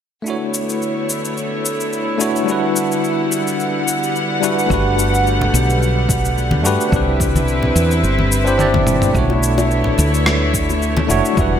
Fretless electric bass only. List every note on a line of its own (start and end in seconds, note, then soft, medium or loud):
4.70 5.48 G1 medium
5.54 6.65 B1 medium
6.65 6.76 G2 medium
6.92 7.71 C2 medium
7.76 8.03 E2 medium
8.03 9.10 G1 medium
9.15 9.93 B1 medium
9.98 11.11 D2 loud
11.10 11.21 F#1 medium
11.37 11.60 E1 medium